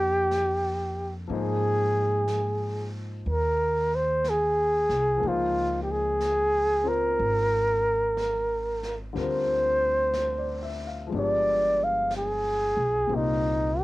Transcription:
Already playing: F2 D3 G3 A#3 C4 D4 F4 G4 A4 A#4
0.31 brush sweep, snare, hi-hat pedal
1.27 G#2 F3 A#3 D#4 G#4, brush sweep
1.33 G#4 C5
2.28 brush sweep, snare, hi-hat pedal
3.26 D#2, brush sweep
3.30 A#4
3.95 C5
4.24 brush sweep, snare, hi-hat pedal
4.30 G#4
4.89 C2, snare
5.16 F3 A#3
5.23 C#2 D#4 G#4, brush sweep
5.28 F4 C5
5.82 G4
5.91 G#4
6.20 brush sweep, snare, hi-hat pedal
6.84 C4 F4 C5
6.88 A#4
7.19 G#1, brush sweep
8.17 brush sweep, snare, hi-hat pedal
8.83 snare
9.13 D2 D3 G3 C4 F4, brush sweep, snare
9.18 A#4 C5
10.13 C5, brush sweep, snare, hi-hat pedal
10.38 D5
10.63 E5
10.87 F5
11.07 F3 G#3
11.12 G1 B3 D4, brush sweep
11.17 G3 D5
11.84 F5
12.11 brush sweep, snare, hi-hat pedal
12.17 G#4
12.77 B1
13.07 C2 A#2 G3 C4 F4, brush sweep
13.12 A#3 D#4
13.80 G4

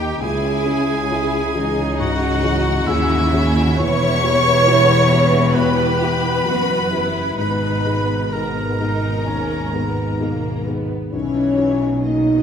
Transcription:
Already playing: D#2 A#2 D#3 A#3 D#4 G4 G5
0.21 C#2 C#3 C#4 E4 G#4 G#5
0.66 C#4 E4 G#4
1.11 C#4 E4 G#4
1.55 E3 C#4 D#4 G#4
1.98 G#2 F#4 F#5
2.43 E3 C#4 G#4
2.86 D#2 C#4 E4 G#4 E5
3.33 C#4 E4 G#4
3.77 E1 E2 E3 B3 E4 C#5 C#6
4.24 B3 E4 G4
4.68 B3 E4 G4
5.11 B3 E4 G4
5.55 B2 G4 B4 B5
6.00 B3 E4 G4
6.46 F#1 F#2 B3 E4 F#4 B4
6.92 B3 E4 G4
7.37 G#1 G#2 B2 G#3 B3 D#4 B4 B5
7.85 B3 D#4 G#4
8.32 B3 D#4 G#4 A#4 A#5
8.80 B3 D#4 G#4
9.27 D#2 C#4
9.73 B3 D#4 G#4
10.19 B2 A#3 D#4 G#4
10.65 B3 D#4 G#4
11.13 B1 B2 E3 C#4 C#5
11.35 D#4
11.57 F#4
11.80 D#4
12.03 F#3 A#3 D#4 D#5
12.26 F#4

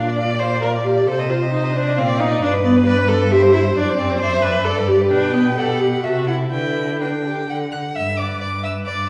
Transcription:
Already playing: A#2 D4 D5
0.08 D5
0.16 D5 F5
0.30 D5
0.40 C5 F5
0.54 D5
0.62 A#4 F5
0.75 D5
0.83 G4
0.87 F5
0.97 D5
1.07 C3 A4 C5
1.19 D#5
1.29 F4 C5
1.42 D#5
1.51 D#4 C5
1.64 D#5
1.74 D4 C5
1.87 D#5
1.97 A#2 C4 D5 F5
2.08 D5
2.18 D#4 F5
2.30 D5
2.41 G2 D4 B4 D5
2.53 B4
2.64 B3 D5
2.76 B4
2.87 B4 D5
2.99 B4
3.09 A4 D5
3.22 B4
3.31 G4 C5 E5
3.42 C5
3.52 E4 E5
3.65 C5
3.76 F#2 D4 D5
3.89 C5
3.98 C4 D5
4.10 C5
4.19 C5 D5 E5
4.33 C5
4.42 B4 D5
4.56 C5
4.65 G2 A4 D5
4.78 B4
4.87 G4
4.92 D5
5.01 B4
5.11 B2 D4 B4 G5
5.33 B3
5.57 G4 A4 F#5
5.80 G4
6.03 C3 F#4 A4 E5
6.27 E4 F#5
6.51 D3 E4 B4 G5
6.99 D4 B4 G5
7.25 G4
7.49 D3 F#5 G5
7.72 F#5 F#6
7.96 G2 E5 E6
8.17 B4 D5 D6
8.40 G2 D5 D6
8.63 B4 E5 E6
8.86 G2 D5 D6

